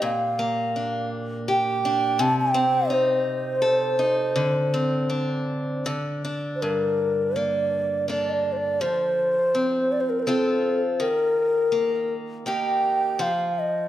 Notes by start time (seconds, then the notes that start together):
Already playing: C4 D#4 G4
0.02 A#2 F5
0.39 A#3
0.76 D4
1.48 G4 G5
1.85 D4
2.19 C3 A5
2.39 G5
2.54 C4
2.90 D#4 C5
3.62 A4
3.99 D#4
4.36 D3
4.74 C4
5.10 D4
5.86 D3
6.25 D4
6.55 C5
6.62 G2 A#4
7.36 A#3 D5
8.08 A#3 D4 A4 D5
8.30 D5 D#5
8.52 C5
8.57 D5
8.81 F3 C5
9.55 C4
9.92 D5
10.01 C5
10.10 A#4
10.19 A#4 C5
10.27 C4 F4 A4
11.00 D#3 A#4
11.72 A#3
12.46 A#3 D#4 G4 G5
13.19 F3 F5
13.59 D#5